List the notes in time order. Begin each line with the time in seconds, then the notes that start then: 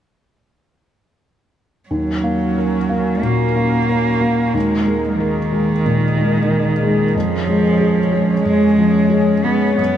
1.89 D#2 F#3 C#4 F#4 A#4
2.24 A#3
2.58 A#4
2.89 A#3
3.23 A#2 A#3
3.56 A#3
3.89 A#4
4.21 A#3
4.54 D#2 G#3 A#3 G#4
4.87 G#3
5.19 D#3 A#4
5.53 G#3
5.85 A#2
6.17 G#3
6.51 A#4
6.83 G#3
7.14 F2 F3 C#4 C#5
7.48 G#3
7.80 G#4
8.12 G#3
8.43 F2 G#3
8.78 F3
9.10 G#4
9.44 G#3 B3
9.77 F#2 B3 F#4